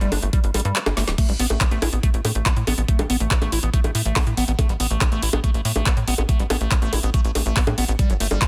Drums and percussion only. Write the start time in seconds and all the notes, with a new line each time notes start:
0.01 closed hi-hat
0.12 open hi-hat, high bongo
0.22 closed hi-hat
0.33 kick, closed hi-hat
0.44 closed hi-hat
0.54 open hi-hat, high bongo
0.60 closed hi-hat
0.65 closed hi-hat
0.76 clap, closed hi-hat
0.86 snare, closed hi-hat, high bongo
0.97 snare, open hi-hat
1.08 snare, closed hi-hat
1.18 kick, closed hi-hat, crash
1.29 closed hi-hat
1.39 open hi-hat
1.50 closed hi-hat, high bongo
1.61 kick, clap, closed hi-hat
1.71 closed hi-hat
1.82 open hi-hat, high bongo
1.93 closed hi-hat
2.03 kick, closed hi-hat
2.14 closed hi-hat
2.25 open hi-hat, high bongo
2.35 closed hi-hat
2.46 kick, clap, closed hi-hat
2.57 closed hi-hat
2.67 open hi-hat, high bongo
2.78 closed hi-hat
2.88 kick, closed hi-hat
2.99 closed hi-hat, high bongo
3.10 open hi-hat
3.20 closed hi-hat
3.31 kick, clap, closed hi-hat
3.42 closed hi-hat, high bongo
3.52 open hi-hat
3.63 closed hi-hat
3.74 kick, closed hi-hat
3.84 closed hi-hat, high bongo
3.95 open hi-hat
4.05 closed hi-hat
4.16 kick, clap, open hi-hat, high bongo
4.27 closed hi-hat
4.37 open hi-hat
4.48 closed hi-hat
4.59 kick, closed hi-hat, high bongo
4.69 closed hi-hat
4.80 open hi-hat
4.91 closed hi-hat
5.01 kick, clap, closed hi-hat, high bongo
5.12 closed hi-hat
5.22 open hi-hat
5.33 closed hi-hat, high bongo
5.44 kick, closed hi-hat
5.54 closed hi-hat
5.65 open hi-hat
5.76 closed hi-hat, high bongo
5.86 kick, clap, closed hi-hat
5.97 closed hi-hat
6.08 open hi-hat
6.18 closed hi-hat, high bongo
6.29 kick, closed hi-hat
6.39 closed hi-hat
6.50 open hi-hat, high bongo
6.61 closed hi-hat
6.71 kick, clap, closed hi-hat
6.82 closed hi-hat
6.93 open hi-hat, high bongo
7.03 closed hi-hat
7.14 kick, closed hi-hat
7.25 closed hi-hat
7.35 open hi-hat, high bongo
7.46 closed hi-hat
7.57 kick, clap, open hi-hat
7.67 closed hi-hat, high bongo
7.78 open hi-hat
7.88 closed hi-hat
7.99 kick, closed hi-hat
8.10 closed hi-hat
8.20 open hi-hat
8.31 closed hi-hat, high bongo
8.42 kick, clap, closed hi-hat